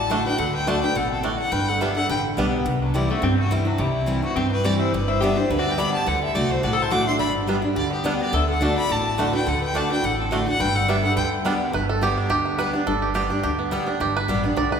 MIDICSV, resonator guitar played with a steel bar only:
0, 0, Header, 1, 2, 480
1, 0, Start_track
1, 0, Key_signature, 1, "major"
1, 0, Tempo, 283822
1, 649, Time_signature, 4, 2, 24, 8
1, 25028, End_track
2, 0, Start_track
2, 0, Title_t, "Resonator guitar played with a steel bar"
2, 0, Program_c, 0, 25
2, 0, Note_on_c, 0, 74, 78
2, 443, Note_off_c, 0, 74, 0
2, 450, Note_on_c, 0, 71, 85
2, 659, Note_off_c, 0, 71, 0
2, 659, Note_on_c, 0, 69, 74
2, 901, Note_on_c, 0, 71, 80
2, 913, Note_off_c, 0, 69, 0
2, 1111, Note_off_c, 0, 71, 0
2, 1132, Note_on_c, 0, 74, 83
2, 1391, Note_off_c, 0, 74, 0
2, 1409, Note_on_c, 0, 71, 85
2, 1632, Note_off_c, 0, 71, 0
2, 1632, Note_on_c, 0, 69, 76
2, 1881, Note_off_c, 0, 69, 0
2, 1895, Note_on_c, 0, 60, 58
2, 2090, Note_off_c, 0, 60, 0
2, 2106, Note_on_c, 0, 66, 68
2, 2358, Note_off_c, 0, 66, 0
2, 2373, Note_on_c, 0, 69, 86
2, 2576, Note_off_c, 0, 69, 0
2, 2576, Note_on_c, 0, 71, 80
2, 2858, Note_off_c, 0, 71, 0
2, 2858, Note_on_c, 0, 69, 80
2, 3076, Note_off_c, 0, 69, 0
2, 3076, Note_on_c, 0, 67, 67
2, 3323, Note_off_c, 0, 67, 0
2, 3327, Note_on_c, 0, 69, 80
2, 3526, Note_off_c, 0, 69, 0
2, 3545, Note_on_c, 0, 71, 82
2, 3781, Note_off_c, 0, 71, 0
2, 4769, Note_on_c, 0, 54, 63
2, 4982, Note_off_c, 0, 54, 0
2, 4982, Note_on_c, 0, 55, 57
2, 5250, Note_off_c, 0, 55, 0
2, 5250, Note_on_c, 0, 57, 78
2, 5460, Note_off_c, 0, 57, 0
2, 5460, Note_on_c, 0, 60, 70
2, 5716, Note_off_c, 0, 60, 0
2, 5722, Note_on_c, 0, 57, 74
2, 5938, Note_off_c, 0, 57, 0
2, 5938, Note_on_c, 0, 55, 60
2, 6192, Note_off_c, 0, 55, 0
2, 6198, Note_on_c, 0, 54, 67
2, 6419, Note_off_c, 0, 54, 0
2, 6419, Note_on_c, 0, 55, 64
2, 7156, Note_off_c, 0, 55, 0
2, 7160, Note_on_c, 0, 57, 62
2, 7365, Note_off_c, 0, 57, 0
2, 7365, Note_on_c, 0, 60, 64
2, 7616, Note_on_c, 0, 62, 76
2, 7629, Note_off_c, 0, 60, 0
2, 7830, Note_off_c, 0, 62, 0
2, 7852, Note_on_c, 0, 67, 77
2, 8104, Note_on_c, 0, 64, 77
2, 8112, Note_off_c, 0, 67, 0
2, 8336, Note_off_c, 0, 64, 0
2, 8336, Note_on_c, 0, 62, 72
2, 8589, Note_off_c, 0, 62, 0
2, 8589, Note_on_c, 0, 64, 80
2, 8799, Note_off_c, 0, 64, 0
2, 8799, Note_on_c, 0, 67, 84
2, 9061, Note_off_c, 0, 67, 0
2, 9061, Note_on_c, 0, 64, 87
2, 9285, Note_off_c, 0, 64, 0
2, 9285, Note_on_c, 0, 62, 77
2, 9445, Note_off_c, 0, 62, 0
2, 9445, Note_on_c, 0, 66, 74
2, 9610, Note_off_c, 0, 66, 0
2, 9612, Note_on_c, 0, 71, 75
2, 9771, Note_off_c, 0, 71, 0
2, 9771, Note_on_c, 0, 74, 85
2, 10025, Note_off_c, 0, 74, 0
2, 10032, Note_on_c, 0, 72, 81
2, 10251, Note_off_c, 0, 72, 0
2, 10251, Note_on_c, 0, 69, 61
2, 10511, Note_off_c, 0, 69, 0
2, 10520, Note_on_c, 0, 67, 76
2, 10748, Note_off_c, 0, 67, 0
2, 10748, Note_on_c, 0, 66, 73
2, 10998, Note_off_c, 0, 66, 0
2, 10998, Note_on_c, 0, 64, 81
2, 11228, Note_off_c, 0, 64, 0
2, 11228, Note_on_c, 0, 66, 70
2, 11383, Note_off_c, 0, 66, 0
2, 11383, Note_on_c, 0, 69, 79
2, 11535, Note_off_c, 0, 69, 0
2, 11535, Note_on_c, 0, 72, 80
2, 11694, Note_off_c, 0, 72, 0
2, 11702, Note_on_c, 0, 78, 84
2, 11947, Note_off_c, 0, 78, 0
2, 11954, Note_on_c, 0, 76, 82
2, 12158, Note_off_c, 0, 76, 0
2, 12161, Note_on_c, 0, 74, 85
2, 12406, Note_off_c, 0, 74, 0
2, 13114, Note_on_c, 0, 67, 73
2, 13362, Note_off_c, 0, 67, 0
2, 13374, Note_on_c, 0, 59, 64
2, 13587, Note_off_c, 0, 59, 0
2, 13618, Note_on_c, 0, 62, 60
2, 13873, Note_off_c, 0, 62, 0
2, 13879, Note_on_c, 0, 66, 81
2, 14098, Note_off_c, 0, 66, 0
2, 14098, Note_on_c, 0, 69, 73
2, 14332, Note_off_c, 0, 69, 0
2, 14353, Note_on_c, 0, 69, 69
2, 14556, Note_off_c, 0, 69, 0
2, 14574, Note_on_c, 0, 74, 82
2, 14811, Note_off_c, 0, 74, 0
2, 14831, Note_on_c, 0, 74, 104
2, 15022, Note_off_c, 0, 74, 0
2, 15043, Note_on_c, 0, 74, 76
2, 15766, Note_off_c, 0, 74, 0
2, 15772, Note_on_c, 0, 71, 86
2, 16022, Note_off_c, 0, 71, 0
2, 16022, Note_on_c, 0, 69, 70
2, 16268, Note_on_c, 0, 71, 84
2, 16274, Note_off_c, 0, 69, 0
2, 16505, Note_off_c, 0, 71, 0
2, 16505, Note_on_c, 0, 74, 82
2, 16741, Note_on_c, 0, 71, 89
2, 16755, Note_off_c, 0, 74, 0
2, 16980, Note_off_c, 0, 71, 0
2, 16980, Note_on_c, 0, 69, 79
2, 17232, Note_off_c, 0, 69, 0
2, 17233, Note_on_c, 0, 60, 59
2, 17435, Note_off_c, 0, 60, 0
2, 17454, Note_on_c, 0, 66, 69
2, 17689, Note_on_c, 0, 69, 84
2, 17709, Note_off_c, 0, 66, 0
2, 17921, Note_off_c, 0, 69, 0
2, 17921, Note_on_c, 0, 71, 85
2, 18171, Note_off_c, 0, 71, 0
2, 18171, Note_on_c, 0, 69, 82
2, 18402, Note_off_c, 0, 69, 0
2, 18402, Note_on_c, 0, 67, 75
2, 18649, Note_on_c, 0, 69, 85
2, 18662, Note_off_c, 0, 67, 0
2, 18862, Note_off_c, 0, 69, 0
2, 18876, Note_on_c, 0, 71, 85
2, 19121, Note_off_c, 0, 71, 0
2, 25028, End_track
0, 0, End_of_file